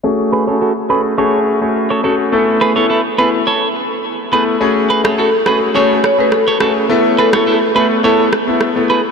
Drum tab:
SD |----------------|----------------|---r--r---r-r-r-|---r------r-r---|